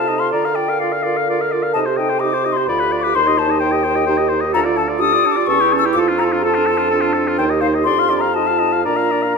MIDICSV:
0, 0, Header, 1, 6, 480
1, 0, Start_track
1, 0, Key_signature, -2, "major"
1, 0, Tempo, 467290
1, 340, Time_signature, 3, 2, 24, 8
1, 5618, Tempo, 480384
1, 8018, Tempo, 499584
1, 9467, End_track
2, 0, Start_track
2, 0, Title_t, "Flute"
2, 0, Program_c, 0, 73
2, 0, Note_on_c, 0, 81, 60
2, 194, Note_on_c, 0, 84, 59
2, 209, Note_off_c, 0, 81, 0
2, 328, Note_off_c, 0, 84, 0
2, 334, Note_on_c, 0, 82, 60
2, 569, Note_on_c, 0, 79, 58
2, 584, Note_off_c, 0, 82, 0
2, 814, Note_on_c, 0, 77, 48
2, 830, Note_off_c, 0, 79, 0
2, 1550, Note_off_c, 0, 77, 0
2, 1781, Note_on_c, 0, 81, 63
2, 1842, Note_off_c, 0, 81, 0
2, 2023, Note_on_c, 0, 79, 60
2, 2257, Note_on_c, 0, 86, 76
2, 2272, Note_off_c, 0, 79, 0
2, 2594, Note_on_c, 0, 84, 61
2, 2609, Note_off_c, 0, 86, 0
2, 2745, Note_off_c, 0, 84, 0
2, 2751, Note_on_c, 0, 83, 68
2, 3094, Note_on_c, 0, 86, 73
2, 3109, Note_off_c, 0, 83, 0
2, 3239, Note_on_c, 0, 84, 72
2, 3255, Note_off_c, 0, 86, 0
2, 3480, Note_on_c, 0, 81, 68
2, 3495, Note_off_c, 0, 84, 0
2, 3700, Note_on_c, 0, 79, 62
2, 3715, Note_off_c, 0, 81, 0
2, 4424, Note_off_c, 0, 79, 0
2, 4664, Note_on_c, 0, 82, 83
2, 4726, Note_off_c, 0, 82, 0
2, 4894, Note_on_c, 0, 81, 61
2, 4956, Note_off_c, 0, 81, 0
2, 5129, Note_on_c, 0, 87, 92
2, 5462, Note_on_c, 0, 86, 76
2, 5478, Note_off_c, 0, 87, 0
2, 5614, Note_on_c, 0, 85, 80
2, 5629, Note_off_c, 0, 86, 0
2, 5929, Note_off_c, 0, 85, 0
2, 5935, Note_on_c, 0, 88, 82
2, 5995, Note_off_c, 0, 88, 0
2, 6080, Note_on_c, 0, 86, 82
2, 6140, Note_off_c, 0, 86, 0
2, 6328, Note_on_c, 0, 82, 74
2, 6388, Note_off_c, 0, 82, 0
2, 6519, Note_on_c, 0, 82, 49
2, 6589, Note_on_c, 0, 81, 65
2, 6604, Note_off_c, 0, 82, 0
2, 7303, Note_off_c, 0, 81, 0
2, 7528, Note_on_c, 0, 79, 72
2, 7588, Note_off_c, 0, 79, 0
2, 7755, Note_on_c, 0, 77, 64
2, 7815, Note_off_c, 0, 77, 0
2, 7986, Note_on_c, 0, 84, 82
2, 8325, Note_on_c, 0, 82, 63
2, 8339, Note_off_c, 0, 84, 0
2, 8468, Note_on_c, 0, 81, 69
2, 8482, Note_off_c, 0, 82, 0
2, 8949, Note_off_c, 0, 81, 0
2, 8955, Note_on_c, 0, 82, 61
2, 9467, Note_off_c, 0, 82, 0
2, 9467, End_track
3, 0, Start_track
3, 0, Title_t, "Oboe"
3, 0, Program_c, 1, 68
3, 81, Note_on_c, 1, 75, 36
3, 206, Note_on_c, 1, 77, 35
3, 221, Note_off_c, 1, 75, 0
3, 322, Note_off_c, 1, 77, 0
3, 328, Note_on_c, 1, 74, 40
3, 461, Note_on_c, 1, 77, 38
3, 477, Note_off_c, 1, 74, 0
3, 567, Note_on_c, 1, 74, 36
3, 582, Note_off_c, 1, 77, 0
3, 708, Note_on_c, 1, 77, 32
3, 723, Note_off_c, 1, 74, 0
3, 817, Note_off_c, 1, 77, 0
3, 824, Note_on_c, 1, 74, 35
3, 950, Note_on_c, 1, 77, 32
3, 965, Note_off_c, 1, 74, 0
3, 1057, Note_on_c, 1, 74, 35
3, 1072, Note_off_c, 1, 77, 0
3, 1198, Note_on_c, 1, 77, 33
3, 1213, Note_off_c, 1, 74, 0
3, 1316, Note_off_c, 1, 77, 0
3, 1330, Note_on_c, 1, 74, 39
3, 1451, Note_on_c, 1, 77, 36
3, 1466, Note_off_c, 1, 74, 0
3, 1560, Note_on_c, 1, 74, 37
3, 1576, Note_off_c, 1, 77, 0
3, 1672, Note_on_c, 1, 77, 39
3, 1688, Note_off_c, 1, 74, 0
3, 1781, Note_off_c, 1, 77, 0
3, 1788, Note_on_c, 1, 75, 43
3, 1907, Note_on_c, 1, 72, 39
3, 1923, Note_off_c, 1, 75, 0
3, 2021, Note_on_c, 1, 75, 41
3, 2037, Note_off_c, 1, 72, 0
3, 2153, Note_on_c, 1, 72, 36
3, 2169, Note_off_c, 1, 75, 0
3, 2251, Note_off_c, 1, 72, 0
3, 2257, Note_on_c, 1, 75, 38
3, 2400, Note_on_c, 1, 72, 36
3, 2416, Note_off_c, 1, 75, 0
3, 2516, Note_on_c, 1, 75, 43
3, 2532, Note_off_c, 1, 72, 0
3, 2640, Note_on_c, 1, 72, 34
3, 2655, Note_off_c, 1, 75, 0
3, 2749, Note_off_c, 1, 72, 0
3, 2756, Note_on_c, 1, 74, 46
3, 2875, Note_on_c, 1, 71, 42
3, 2891, Note_off_c, 1, 74, 0
3, 3000, Note_on_c, 1, 74, 43
3, 3016, Note_off_c, 1, 71, 0
3, 3120, Note_on_c, 1, 71, 42
3, 3135, Note_off_c, 1, 74, 0
3, 3232, Note_off_c, 1, 71, 0
3, 3238, Note_on_c, 1, 72, 52
3, 3362, Note_on_c, 1, 75, 46
3, 3378, Note_off_c, 1, 72, 0
3, 3471, Note_on_c, 1, 72, 48
3, 3486, Note_off_c, 1, 75, 0
3, 3602, Note_on_c, 1, 75, 41
3, 3618, Note_off_c, 1, 72, 0
3, 3692, Note_off_c, 1, 75, 0
3, 3698, Note_on_c, 1, 72, 46
3, 3821, Note_on_c, 1, 75, 44
3, 3836, Note_off_c, 1, 72, 0
3, 3941, Note_on_c, 1, 72, 47
3, 3956, Note_off_c, 1, 75, 0
3, 4067, Note_on_c, 1, 75, 45
3, 4083, Note_off_c, 1, 72, 0
3, 4168, Note_off_c, 1, 75, 0
3, 4174, Note_on_c, 1, 72, 55
3, 4288, Note_on_c, 1, 75, 50
3, 4304, Note_off_c, 1, 72, 0
3, 4408, Note_on_c, 1, 72, 52
3, 4423, Note_off_c, 1, 75, 0
3, 4528, Note_on_c, 1, 75, 50
3, 4543, Note_off_c, 1, 72, 0
3, 4649, Note_off_c, 1, 75, 0
3, 4655, Note_on_c, 1, 69, 59
3, 4778, Note_on_c, 1, 74, 52
3, 4793, Note_off_c, 1, 69, 0
3, 4905, Note_on_c, 1, 69, 51
3, 4920, Note_off_c, 1, 74, 0
3, 5020, Note_on_c, 1, 74, 45
3, 5036, Note_off_c, 1, 69, 0
3, 5140, Note_off_c, 1, 74, 0
3, 5157, Note_on_c, 1, 69, 46
3, 5272, Note_on_c, 1, 74, 47
3, 5288, Note_off_c, 1, 69, 0
3, 5403, Note_on_c, 1, 69, 51
3, 5418, Note_off_c, 1, 74, 0
3, 5509, Note_on_c, 1, 74, 46
3, 5524, Note_off_c, 1, 69, 0
3, 5625, Note_off_c, 1, 74, 0
3, 5640, Note_on_c, 1, 69, 52
3, 5759, Note_on_c, 1, 67, 50
3, 5774, Note_off_c, 1, 69, 0
3, 5879, Note_on_c, 1, 69, 53
3, 5894, Note_off_c, 1, 67, 0
3, 6006, Note_on_c, 1, 67, 47
3, 6021, Note_off_c, 1, 69, 0
3, 6113, Note_off_c, 1, 67, 0
3, 6126, Note_on_c, 1, 69, 56
3, 6231, Note_on_c, 1, 65, 51
3, 6246, Note_off_c, 1, 69, 0
3, 6350, Note_on_c, 1, 69, 51
3, 6365, Note_off_c, 1, 65, 0
3, 6473, Note_on_c, 1, 65, 46
3, 6488, Note_off_c, 1, 69, 0
3, 6588, Note_off_c, 1, 65, 0
3, 6593, Note_on_c, 1, 69, 48
3, 6692, Note_on_c, 1, 65, 44
3, 6707, Note_off_c, 1, 69, 0
3, 6811, Note_on_c, 1, 69, 52
3, 6826, Note_off_c, 1, 65, 0
3, 6928, Note_on_c, 1, 65, 43
3, 6943, Note_off_c, 1, 69, 0
3, 7047, Note_off_c, 1, 65, 0
3, 7053, Note_on_c, 1, 69, 55
3, 7159, Note_on_c, 1, 65, 46
3, 7174, Note_off_c, 1, 69, 0
3, 7281, Note_on_c, 1, 69, 49
3, 7296, Note_off_c, 1, 65, 0
3, 7423, Note_on_c, 1, 65, 44
3, 7438, Note_off_c, 1, 69, 0
3, 7527, Note_off_c, 1, 65, 0
3, 7533, Note_on_c, 1, 72, 52
3, 7648, Note_on_c, 1, 75, 46
3, 7663, Note_off_c, 1, 72, 0
3, 7757, Note_on_c, 1, 72, 46
3, 7772, Note_off_c, 1, 75, 0
3, 7894, Note_on_c, 1, 75, 42
3, 7909, Note_off_c, 1, 72, 0
3, 8005, Note_off_c, 1, 75, 0
3, 8011, Note_on_c, 1, 74, 42
3, 8135, Note_on_c, 1, 77, 40
3, 8150, Note_off_c, 1, 74, 0
3, 8238, Note_on_c, 1, 74, 42
3, 8252, Note_off_c, 1, 77, 0
3, 8344, Note_on_c, 1, 77, 37
3, 8358, Note_off_c, 1, 74, 0
3, 8476, Note_off_c, 1, 77, 0
3, 8484, Note_on_c, 1, 75, 41
3, 8592, Note_on_c, 1, 77, 38
3, 8606, Note_off_c, 1, 75, 0
3, 8707, Note_on_c, 1, 75, 40
3, 8722, Note_off_c, 1, 77, 0
3, 8840, Note_on_c, 1, 77, 36
3, 8854, Note_off_c, 1, 75, 0
3, 8957, Note_off_c, 1, 77, 0
3, 8963, Note_on_c, 1, 74, 41
3, 9069, Note_on_c, 1, 77, 35
3, 9084, Note_off_c, 1, 74, 0
3, 9210, Note_on_c, 1, 74, 34
3, 9224, Note_off_c, 1, 77, 0
3, 9318, Note_on_c, 1, 77, 31
3, 9332, Note_off_c, 1, 74, 0
3, 9439, Note_off_c, 1, 77, 0
3, 9467, End_track
4, 0, Start_track
4, 0, Title_t, "French horn"
4, 0, Program_c, 2, 60
4, 0, Note_on_c, 2, 69, 51
4, 820, Note_off_c, 2, 69, 0
4, 826, Note_on_c, 2, 70, 55
4, 1792, Note_on_c, 2, 69, 54
4, 1807, Note_off_c, 2, 70, 0
4, 2263, Note_off_c, 2, 69, 0
4, 2270, Note_on_c, 2, 67, 54
4, 2740, Note_off_c, 2, 67, 0
4, 2754, Note_on_c, 2, 65, 51
4, 3224, Note_off_c, 2, 65, 0
4, 3239, Note_on_c, 2, 63, 61
4, 4173, Note_off_c, 2, 63, 0
4, 4184, Note_on_c, 2, 67, 64
4, 4667, Note_on_c, 2, 65, 65
4, 4682, Note_off_c, 2, 67, 0
4, 5130, Note_on_c, 2, 67, 73
4, 5145, Note_off_c, 2, 65, 0
4, 5813, Note_off_c, 2, 67, 0
4, 6091, Note_on_c, 2, 65, 71
4, 6577, Note_on_c, 2, 69, 72
4, 6592, Note_off_c, 2, 65, 0
4, 7055, Note_off_c, 2, 69, 0
4, 7061, Note_on_c, 2, 62, 58
4, 7540, Note_on_c, 2, 63, 65
4, 7555, Note_off_c, 2, 62, 0
4, 8011, Note_on_c, 2, 67, 63
4, 8025, Note_off_c, 2, 63, 0
4, 8489, Note_on_c, 2, 65, 50
4, 8504, Note_off_c, 2, 67, 0
4, 8976, Note_on_c, 2, 62, 43
4, 8990, Note_off_c, 2, 65, 0
4, 9413, Note_off_c, 2, 62, 0
4, 9467, End_track
5, 0, Start_track
5, 0, Title_t, "Clarinet"
5, 0, Program_c, 3, 71
5, 0, Note_on_c, 3, 65, 36
5, 105, Note_on_c, 3, 63, 38
5, 120, Note_off_c, 3, 65, 0
5, 218, Note_on_c, 3, 65, 33
5, 233, Note_off_c, 3, 63, 0
5, 340, Note_off_c, 3, 65, 0
5, 345, Note_on_c, 3, 65, 41
5, 467, Note_on_c, 3, 70, 36
5, 483, Note_off_c, 3, 65, 0
5, 583, Note_on_c, 3, 65, 40
5, 599, Note_off_c, 3, 70, 0
5, 711, Note_on_c, 3, 70, 33
5, 726, Note_off_c, 3, 65, 0
5, 826, Note_off_c, 3, 70, 0
5, 832, Note_on_c, 3, 65, 40
5, 953, Note_on_c, 3, 70, 35
5, 969, Note_off_c, 3, 65, 0
5, 1083, Note_on_c, 3, 65, 38
5, 1098, Note_off_c, 3, 70, 0
5, 1209, Note_on_c, 3, 70, 35
5, 1224, Note_off_c, 3, 65, 0
5, 1322, Note_off_c, 3, 70, 0
5, 1334, Note_on_c, 3, 65, 38
5, 1444, Note_on_c, 3, 70, 38
5, 1459, Note_off_c, 3, 65, 0
5, 1575, Note_on_c, 3, 65, 41
5, 1590, Note_off_c, 3, 70, 0
5, 1691, Note_on_c, 3, 70, 36
5, 1706, Note_off_c, 3, 65, 0
5, 1803, Note_off_c, 3, 70, 0
5, 1813, Note_on_c, 3, 63, 41
5, 1924, Note_on_c, 3, 67, 39
5, 1939, Note_off_c, 3, 63, 0
5, 2051, Note_on_c, 3, 63, 41
5, 2067, Note_off_c, 3, 67, 0
5, 2174, Note_on_c, 3, 67, 37
5, 2189, Note_off_c, 3, 63, 0
5, 2283, Note_off_c, 3, 67, 0
5, 2292, Note_on_c, 3, 63, 42
5, 2405, Note_on_c, 3, 67, 37
5, 2420, Note_off_c, 3, 63, 0
5, 2528, Note_on_c, 3, 63, 44
5, 2544, Note_off_c, 3, 67, 0
5, 2643, Note_on_c, 3, 67, 40
5, 2658, Note_off_c, 3, 63, 0
5, 2757, Note_off_c, 3, 67, 0
5, 2775, Note_on_c, 3, 65, 43
5, 2889, Note_on_c, 3, 67, 42
5, 2905, Note_off_c, 3, 65, 0
5, 3011, Note_on_c, 3, 65, 44
5, 3026, Note_off_c, 3, 67, 0
5, 3145, Note_on_c, 3, 67, 41
5, 3160, Note_off_c, 3, 65, 0
5, 3248, Note_off_c, 3, 67, 0
5, 3258, Note_on_c, 3, 63, 46
5, 3370, Note_on_c, 3, 67, 42
5, 3385, Note_off_c, 3, 63, 0
5, 3473, Note_on_c, 3, 63, 46
5, 3488, Note_off_c, 3, 67, 0
5, 3579, Note_on_c, 3, 67, 43
5, 3594, Note_off_c, 3, 63, 0
5, 3703, Note_off_c, 3, 67, 0
5, 3707, Note_on_c, 3, 63, 46
5, 3822, Note_on_c, 3, 67, 43
5, 3838, Note_off_c, 3, 63, 0
5, 3957, Note_on_c, 3, 63, 51
5, 3973, Note_off_c, 3, 67, 0
5, 4068, Note_on_c, 3, 67, 43
5, 4084, Note_off_c, 3, 63, 0
5, 4188, Note_off_c, 3, 67, 0
5, 4200, Note_on_c, 3, 63, 53
5, 4314, Note_on_c, 3, 67, 47
5, 4330, Note_off_c, 3, 63, 0
5, 4439, Note_on_c, 3, 63, 53
5, 4455, Note_off_c, 3, 67, 0
5, 4565, Note_on_c, 3, 67, 46
5, 4580, Note_off_c, 3, 63, 0
5, 4665, Note_off_c, 3, 67, 0
5, 4671, Note_on_c, 3, 62, 53
5, 4788, Note_on_c, 3, 65, 50
5, 4803, Note_off_c, 3, 62, 0
5, 4900, Note_on_c, 3, 62, 53
5, 4915, Note_off_c, 3, 65, 0
5, 5020, Note_on_c, 3, 65, 50
5, 5035, Note_off_c, 3, 62, 0
5, 5139, Note_off_c, 3, 65, 0
5, 5145, Note_on_c, 3, 62, 51
5, 5276, Note_on_c, 3, 65, 47
5, 5291, Note_off_c, 3, 62, 0
5, 5396, Note_on_c, 3, 62, 54
5, 5411, Note_off_c, 3, 65, 0
5, 5517, Note_on_c, 3, 65, 47
5, 5533, Note_off_c, 3, 62, 0
5, 5629, Note_off_c, 3, 65, 0
5, 5641, Note_on_c, 3, 61, 49
5, 5754, Note_on_c, 3, 64, 50
5, 5769, Note_off_c, 3, 61, 0
5, 5877, Note_on_c, 3, 61, 54
5, 5892, Note_off_c, 3, 64, 0
5, 6000, Note_on_c, 3, 64, 49
5, 6015, Note_off_c, 3, 61, 0
5, 6110, Note_off_c, 3, 64, 0
5, 6119, Note_on_c, 3, 65, 57
5, 6246, Note_on_c, 3, 62, 50
5, 6261, Note_off_c, 3, 65, 0
5, 6360, Note_on_c, 3, 65, 56
5, 6375, Note_off_c, 3, 62, 0
5, 6481, Note_on_c, 3, 62, 46
5, 6496, Note_off_c, 3, 65, 0
5, 6592, Note_off_c, 3, 62, 0
5, 6601, Note_on_c, 3, 65, 53
5, 6721, Note_on_c, 3, 62, 48
5, 6736, Note_off_c, 3, 65, 0
5, 6836, Note_on_c, 3, 65, 55
5, 6851, Note_off_c, 3, 62, 0
5, 6944, Note_on_c, 3, 62, 42
5, 6959, Note_off_c, 3, 65, 0
5, 7062, Note_off_c, 3, 62, 0
5, 7074, Note_on_c, 3, 65, 53
5, 7183, Note_on_c, 3, 62, 46
5, 7198, Note_off_c, 3, 65, 0
5, 7294, Note_on_c, 3, 65, 53
5, 7309, Note_off_c, 3, 62, 0
5, 7414, Note_on_c, 3, 62, 44
5, 7429, Note_off_c, 3, 65, 0
5, 7535, Note_off_c, 3, 62, 0
5, 7540, Note_on_c, 3, 63, 51
5, 7652, Note_on_c, 3, 67, 46
5, 7667, Note_off_c, 3, 63, 0
5, 7774, Note_on_c, 3, 63, 46
5, 7789, Note_off_c, 3, 67, 0
5, 7897, Note_on_c, 3, 67, 41
5, 7912, Note_off_c, 3, 63, 0
5, 8006, Note_off_c, 3, 67, 0
5, 8012, Note_on_c, 3, 62, 45
5, 8141, Note_on_c, 3, 65, 39
5, 8155, Note_off_c, 3, 62, 0
5, 8258, Note_on_c, 3, 62, 42
5, 8273, Note_off_c, 3, 65, 0
5, 8380, Note_on_c, 3, 65, 36
5, 8394, Note_off_c, 3, 62, 0
5, 8488, Note_off_c, 3, 65, 0
5, 8494, Note_on_c, 3, 63, 40
5, 8618, Note_on_c, 3, 65, 39
5, 8633, Note_off_c, 3, 63, 0
5, 8738, Note_on_c, 3, 63, 38
5, 8753, Note_off_c, 3, 65, 0
5, 8850, Note_on_c, 3, 65, 33
5, 8864, Note_off_c, 3, 63, 0
5, 8962, Note_off_c, 3, 65, 0
5, 8968, Note_on_c, 3, 62, 37
5, 9097, Note_on_c, 3, 65, 33
5, 9112, Note_off_c, 3, 62, 0
5, 9217, Note_on_c, 3, 62, 35
5, 9231, Note_off_c, 3, 65, 0
5, 9346, Note_on_c, 3, 65, 31
5, 9361, Note_off_c, 3, 62, 0
5, 9456, Note_off_c, 3, 65, 0
5, 9467, End_track
6, 0, Start_track
6, 0, Title_t, "Bassoon"
6, 0, Program_c, 4, 70
6, 0, Note_on_c, 4, 48, 39
6, 337, Note_off_c, 4, 48, 0
6, 343, Note_on_c, 4, 50, 49
6, 1768, Note_off_c, 4, 50, 0
6, 1806, Note_on_c, 4, 48, 53
6, 2766, Note_on_c, 4, 38, 49
6, 2781, Note_off_c, 4, 48, 0
6, 3231, Note_off_c, 4, 38, 0
6, 3237, Note_on_c, 4, 39, 56
6, 4640, Note_off_c, 4, 39, 0
6, 4674, Note_on_c, 4, 38, 60
6, 5329, Note_off_c, 4, 38, 0
6, 5620, Note_on_c, 4, 40, 58
6, 6066, Note_off_c, 4, 40, 0
6, 6099, Note_on_c, 4, 41, 68
6, 7541, Note_on_c, 4, 39, 60
6, 7556, Note_off_c, 4, 41, 0
6, 8022, Note_on_c, 4, 41, 55
6, 8037, Note_off_c, 4, 39, 0
6, 8972, Note_on_c, 4, 46, 50
6, 8986, Note_off_c, 4, 41, 0
6, 9467, Note_off_c, 4, 46, 0
6, 9467, End_track
0, 0, End_of_file